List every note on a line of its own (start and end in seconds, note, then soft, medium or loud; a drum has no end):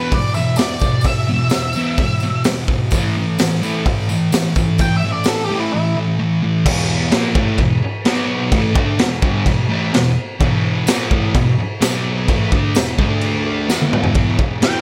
0.00 0.11 E2 medium
0.00 0.12 B2 loud
0.00 0.12 E3 loud
0.00 0.12 B4 medium
0.12 0.34 E2 medium
0.12 0.34 B2 medium
0.12 0.34 D5 medium
0.12 kick loud
0.12 open hi-hat medium
0.34 0.57 E2 medium
0.34 0.57 B2 medium
0.34 0.57 E5 medium
0.34 tambourine medium
0.56 0.80 E2 medium
0.56 0.80 B2 medium
0.56 1.03 D5 medium
0.56 snare loud
0.56 open hi-hat medium
0.56 tambourine loud
0.79 1.03 E2 medium
0.79 kick medium
0.79 tambourine medium
0.84 1.03 B2 medium
1.01 1.26 E2 medium
1.01 1.26 B2 medium
1.01 kick loud
1.01 open hi-hat medium
1.01 tambourine medium
1.06 2.42 E5 medium
1.28 1.49 E2 medium
1.28 1.50 B2 medium
1.49 1.73 E2 medium
1.49 1.73 B2 medium
1.49 snare loud
1.49 open hi-hat medium
1.49 tambourine medium
1.73 1.98 E2 loud
1.73 tambourine medium
1.77 1.98 B2 loud
1.77 1.99 E3 loud
1.98 2.20 E2 medium
1.98 2.20 B2 medium
1.98 kick loud
1.98 open hi-hat medium
2.20 2.44 E2 medium
2.20 2.44 B2 medium
2.20 tambourine medium
2.44 2.67 E2 medium
2.44 2.67 B2 medium
2.44 snare loud
2.44 open hi-hat medium
2.44 tambourine loud
2.68 2.90 E2 medium
2.68 2.90 B2 medium
2.68 kick medium
2.91 3.14 A2 medium
2.91 3.15 E3 loud
2.91 3.15 A3 medium
2.91 kick loud
2.91 open hi-hat soft
2.91 tambourine medium
3.17 3.37 A2 medium
3.17 3.37 E3 medium
3.38 3.60 A2 medium
3.38 3.60 E3 medium
3.38 snare loud
3.38 open hi-hat medium
3.38 tambourine loud
3.62 3.83 A2 medium
3.62 3.84 E3 loud
3.62 3.85 A3 loud
3.62 tambourine medium
3.84 4.06 A2 medium
3.84 4.06 E3 medium
3.84 kick loud
3.84 open hi-hat soft
4.09 4.30 A2 medium
4.09 4.30 E3 medium
4.09 tambourine medium
4.32 4.54 A2 medium
4.32 4.54 E3 medium
4.32 snare loud
4.32 open hi-hat medium
4.32 tambourine loud
4.55 4.77 A2 medium
4.55 4.77 E3 medium
4.55 kick medium
4.55 tambourine medium
4.78 5.01 A2 medium
4.78 5.01 E3 medium
4.78 4.95 G5 medium
4.78 kick loud
4.78 open hi-hat medium
4.78 tambourine medium
4.97 5.11 E5 medium
5.02 5.25 A2 medium
5.02 5.25 E3 medium
5.02 tambourine soft
5.12 5.26 D5 medium
5.24 5.48 A2 medium
5.24 5.42 A4 medium
5.24 snare loud
5.24 open hi-hat medium
5.24 tambourine loud
5.28 5.48 E3 medium
5.45 5.58 G4 medium
5.50 5.72 A2 loud
5.50 5.72 E3 loud
5.50 5.72 A3 loud
5.60 5.72 E4 loud
5.73 5.94 A2 medium
5.73 5.94 E3 medium
5.73 5.95 E4 medium
5.97 6.17 A2 medium
5.97 6.17 E3 medium
6.19 6.40 A2 medium
6.19 6.41 E3 medium
6.43 6.64 A2 medium
6.43 6.64 E3 medium
6.66 7.12 E2 medium
6.66 7.11 B2 medium
6.66 7.12 E3 loud
6.66 kick medium
6.66 crash loud
6.66 crash medium
7.11 7.35 A#2 medium
7.11 7.35 F3 loud
7.11 7.36 A#3 loud
7.11 snare loud
7.11 crash medium
7.35 7.58 A2 loud
7.35 7.59 E3 loud
7.35 7.60 A3 loud
7.35 kick loud
7.58 7.77 E2 medium
7.58 7.77 B2 medium
7.58 kick medium
7.58 crash medium
7.82 muted distorted electric guitar stroke medium
8.05 8.52 B2 medium
8.05 8.52 F#3 loud
8.05 8.52 B3 loud
8.05 snare loud
8.05 crash medium
8.52 8.75 A2 medium
8.52 8.75 E3 medium
8.52 8.75 A3 loud
8.52 kick loud
8.52 crash medium
8.75 8.98 D3 loud
8.75 8.99 A3 loud
8.75 8.99 D4 loud
8.75 kick loud
8.99 9.18 E2 medium
8.99 9.18 B2 medium
8.99 snare loud
8.99 crash medium
9.22 9.45 G2 loud
9.22 9.46 D3 loud
9.22 9.46 G3 loud
9.22 kick loud
9.46 9.65 E2 medium
9.46 9.66 B2 medium
9.46 kick medium
9.46 crash medium
9.69 9.92 A2 medium
9.69 9.92 E3 medium
9.69 9.93 A3 loud
9.93 10.12 E2 medium
9.93 10.12 B2 medium
9.93 snare loud
9.93 crash medium
10.40 10.86 E2 medium
10.40 10.86 B2 loud
10.40 10.86 E3 loud
10.40 kick loud
10.40 crash medium
10.87 11.10 A#2 medium
10.87 11.10 F3 medium
10.87 11.11 A#3 loud
10.87 snare loud
10.87 tambourine loud
10.87 crash medium
11.10 11.33 A2 loud
11.10 11.34 E3 loud
11.10 11.34 A3 loud
11.10 kick loud
11.34 11.53 E2 medium
11.34 11.53 B2 medium
11.34 kick loud
11.34 crash medium
11.59 muted distorted electric guitar stroke medium
11.81 12.27 B2 loud
11.81 12.28 F#3 loud
11.81 12.28 B3 loud
11.81 snare loud
11.81 tambourine loud
11.81 crash medium
12.28 12.51 A2 medium
12.28 12.51 E3 loud
12.28 12.52 A3 loud
12.28 kick loud
12.28 crash medium
12.52 12.75 D3 loud
12.52 12.75 A3 loud
12.52 12.76 D4 loud
12.52 kick loud
12.75 12.94 E2 medium
12.75 12.94 B2 medium
12.75 snare loud
12.75 tambourine medium
12.75 crash medium
12.98 13.68 D3 loud
12.98 13.68 A3 loud
12.98 13.69 D4 loud
12.98 kick loud
13.21 crash medium
13.68 14.14 E2 medium
13.68 14.15 B2 medium
13.68 14.16 E3 medium
13.68 snare medium
13.68 tambourine loud
13.82 high tom medium
13.93 mid tom loud
14.04 floor tom loud
14.14 14.37 E2 medium
14.14 14.38 B2 medium
14.14 14.38 E3 medium
14.14 kick loud
14.14 crash medium
14.39 14.60 E2 medium
14.39 14.60 B2 medium
14.39 kick medium
14.62 14.81 E2 medium
14.62 14.81 B2 medium
14.62 14.81 E3 loud
14.62 14.79 G5 loud
14.62 snare loud
14.62 crash medium